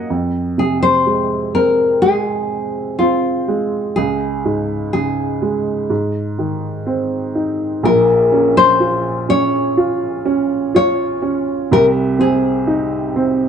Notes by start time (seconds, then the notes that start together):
Already playing: A#3 C#4 D#5 F#5 A#5
0.10 F2
0.58 C3 G#4
0.83 C5
1.06 G#3
1.55 C4 A#4
2.02 G#3 G#4
2.99 C4 F4
3.48 G#3
3.96 C#2 G#4
4.45 G#2
4.93 C#3 G#4
5.42 G#3
5.90 G#2
6.39 D#3
6.86 C4
7.35 D#4
7.83 A#1 A#2 A#4
8.32 C#4
8.57 C5
8.80 F4
9.29 C#4 C#5
9.77 F4
10.25 C#4
10.74 F4 C#5
11.22 C#4
11.71 C2 C3 A#4
12.19 C4 G#4
12.67 D#4
13.16 C4